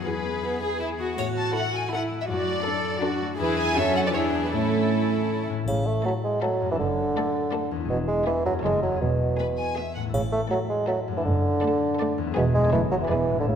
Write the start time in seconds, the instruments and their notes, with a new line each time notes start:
0.05 harp E2, viola section E3, cello section G#4, violin section B4
0.24 harp B3
0.43 violin section B3, harp E4
0.62 harp G#4, violin section G#4
0.80 harp E4, violin section E4
0.99 harp B3, violin section F#4
1.17 harp A2, viola section A3, cello section F#4, violin section C#5, triangle
1.36 harp A3, violin section A5
1.55 harp E4, violin section E4 A4 F#5
1.74 harp A4, violin section G#5
1.92 harp E4, cello section E4, violin section E4 A4 F#5
2.11 harp A3
2.21 violin section E5
2.29 harp F#2, viola section F#3, cello section F#4, violin section D5
2.48 harp A3
2.66 harp D4, violin section D4 A4, cello section A4
2.85 harp A4
3.03 violin section D4 A4, harp D4, cello section F#4
3.22 harp A3
3.40 harp E2, viola section E3, violin section E4 G#4 B4, cello section G#4
3.58 harp E4 G#4, violin section G#5
3.77 harp F#2, viola section F#3, violin section C#4 A4 E5, cello section C#4
3.95 harp C#4 A4, violin section F#5
4.06 violin section D5
4.14 harp E2, viola section E3, violin section D4 G#4 C#5, cello section E4
4.33 harp D4 G#4
4.44 violin section B4
4.52 harp A2, viola section A3, violin section C#4 E4 A4, cello section E4
4.72 harp A3
4.91 harp C#4
5.11 harp A4
5.30 harp C#4
5.49 harp A2 A3
5.54 harp A3
5.59 harp E4
5.63 harp A4
5.67 double bass section A1, cello section A2, bassoon C#3, triangle
5.86 bassoon A3
6.04 bassoon F#3, viola section A3, violin section A4 E5
6.24 bassoon G#3
6.42 bassoon F#3, viola section A3, violin section A4 E5
6.61 harp F#2
6.66 harp A3
6.70 bassoon E3, harp D4
6.75 harp A4
6.79 double bass section F#1, cello section F#2, bassoon D3
7.16 viola section A3, violin section A4 D5
7.52 viola section A3, violin section A4 D5
7.71 harp E2
7.76 harp B3
7.80 harp E4
7.85 harp G#4
7.89 double bass section E1, cello section E2, bassoon B2
8.08 bassoon G#3
8.26 bassoon E3, viola section B3, violin section G#4 E5
8.45 harp F#2, bassoon F#3
8.50 harp A3
8.54 harp C#4
8.59 harp A4
8.63 double bass section F#1, cello section F#2, bassoon G#3, viola section A3, violin section A4 C#5
8.82 harp E2, bassoon F#3
8.87 harp B3
8.92 harp E4
8.96 harp G#4
9.01 double bass section E1, cello section E2, bassoon B2
9.38 viola section B3, violin section G#4 B4
9.58 violin section G#5
9.76 viola section B3, violin section G#4 E5
9.95 harp A2, violin section F#5
10.00 harp A3
10.05 harp E4
10.09 harp A4
10.14 double bass section A1, cello section A2, bassoon C#3, triangle
10.32 bassoon A3
10.51 bassoon F#3, viola section A3, violin section A4 E5
10.69 bassoon G#3
10.88 bassoon F#3, viola section A3, violin section A4 E5
11.08 harp F#2
11.12 harp A3
11.17 bassoon E3, harp D4
11.21 bassoon D3, harp A4
11.26 double bass section F#1, cello section F#2
11.62 viola section A3, violin section A4 D5
11.99 viola section A3, violin section A4 D5
12.18 harp E2
12.23 harp B3
12.27 harp E4
12.31 harp G#4
12.36 double bass section E1, cello section E2, bassoon B2, viola section B3, violin section G#4 E5
12.54 harp F#2, bassoon G#3
12.59 harp A3
12.63 harp C#4
12.68 harp A4
12.72 double bass section F#1, cello section F#2, bassoon E3, viola section A3, violin section A4 C#5
12.91 harp E2, bassoon F#3
12.96 harp G#3
13.00 bassoon E3, harp D4
13.05 harp B4
13.10 double bass section E1, cello section E2, bassoon E3, viola section B3, violin section G#4 D5
13.30 harp A2
13.34 harp A3
13.39 bassoon D3, harp C#4
13.43 harp A4
13.47 double bass section A1, cello section A2, bassoon C#3